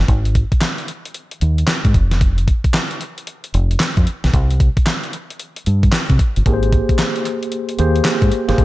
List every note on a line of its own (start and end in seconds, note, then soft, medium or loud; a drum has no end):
0.08 0.43 G#1 loud
0.08 kick loud
0.08 closed hi-hat medium
0.25 closed hi-hat medium
0.35 kick medium
0.35 closed hi-hat medium
0.52 kick medium
0.52 closed hi-hat medium
0.61 snare loud
0.61 clap medium
0.61 closed hi-hat medium
0.78 closed hi-hat soft
0.88 closed hi-hat medium
1.05 closed hi-hat medium
1.14 closed hi-hat medium
1.31 closed hi-hat medium
1.41 1.63 D#2 medium
1.41 closed hi-hat medium
1.58 closed hi-hat medium
1.68 snare loud
1.68 clap medium
1.68 closed hi-hat medium
1.85 1.93 G#2 medium
1.85 kick medium
1.85 closed hi-hat soft
1.94 2.50 F1 medium
1.94 kick medium
1.94 closed hi-hat medium
2.11 snare medium
2.11 closed hi-hat medium
2.21 kick loud
2.21 closed hi-hat medium
2.38 closed hi-hat medium
2.48 kick medium
2.48 closed hi-hat medium
2.64 kick medium
2.64 closed hi-hat medium
2.74 snare loud
2.74 clap loud
2.74 closed hi-hat medium
2.91 closed hi-hat medium
3.01 closed hi-hat medium
3.18 closed hi-hat medium
3.27 closed hi-hat medium
3.44 closed hi-hat medium
3.54 3.75 F1 medium
3.54 closed hi-hat medium
3.71 closed hi-hat soft
3.80 snare loud
3.80 clap loud
3.80 closed hi-hat medium
3.97 4.05 F2 loud
3.97 kick medium
3.97 closed hi-hat soft
4.07 closed hi-hat medium
4.24 4.32 B1 medium
4.24 snare medium
4.24 closed hi-hat soft
4.34 4.68 C2 loud
4.34 kick loud
4.34 closed hi-hat medium
4.51 closed hi-hat medium
4.60 kick loud
4.60 closed hi-hat medium
4.77 kick loud
4.77 closed hi-hat medium
4.87 snare loud
4.87 clap loud
4.87 closed hi-hat medium
5.04 closed hi-hat soft
5.13 closed hi-hat medium
5.30 closed hi-hat medium
5.40 closed hi-hat medium
5.56 closed hi-hat medium
5.66 5.88 G2 medium
5.66 closed hi-hat medium
5.83 kick medium
5.83 closed hi-hat soft
5.92 snare loud
5.92 clap loud
5.92 closed hi-hat medium
6.10 6.17 C3 medium
6.10 kick medium
6.10 closed hi-hat soft
6.19 kick loud
6.19 closed hi-hat medium
6.36 6.44 G1 medium
6.36 closed hi-hat medium
6.46 6.80 G#1 medium
6.46 7.18 A#3 medium
6.46 7.18 G4 medium
6.46 7.18 G#4 medium
6.46 6.55 A#4 medium
6.46 kick loud
6.46 closed hi-hat medium
6.53 7.22 C5 medium
6.63 closed hi-hat medium
6.73 kick loud
6.73 closed hi-hat medium
6.89 kick loud
6.89 closed hi-hat medium
6.99 snare loud
6.99 clap medium
6.99 closed hi-hat medium
7.16 closed hi-hat medium
7.25 clap medium
7.25 closed hi-hat medium
7.43 closed hi-hat medium
7.52 closed hi-hat medium
7.69 closed hi-hat medium
7.78 8.00 D#2 loud
7.78 8.24 A#3 medium
7.78 8.25 G4 medium
7.78 8.25 G#4 medium
7.78 8.25 C5 medium
7.78 closed hi-hat medium
7.96 closed hi-hat soft
8.05 snare loud
8.05 clap loud
8.05 clap medium
8.05 closed hi-hat medium
8.22 8.30 G#2 medium
8.22 kick medium
8.22 closed hi-hat soft
8.32 closed hi-hat medium
8.48 8.56 G1 medium
8.48 8.65 A#3 medium
8.48 8.65 G4 medium
8.48 8.65 G#4 medium
8.48 8.65 C5 medium
8.48 snare medium
8.48 closed hi-hat medium
8.58 8.65 G#1 loud
8.58 kick loud
8.58 closed hi-hat medium